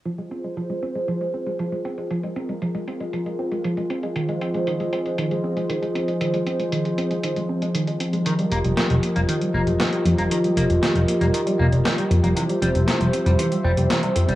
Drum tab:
HH |xxxxxxxxxx-xxxxx|xxxxxxxxxx-xxxxx|xxxxxxxxxx-xxxxx|xxxxxxxxxx-xxxxx|
SD |----------------|----------------|----------------|----------------|

HH |xxxxxxxxxx-xxxxx|xxxxxxxxxx-xxxxx|xxxxxxxxxx-xxxxx|
SD |----o-------o---|----o-------o---|----o-------o---|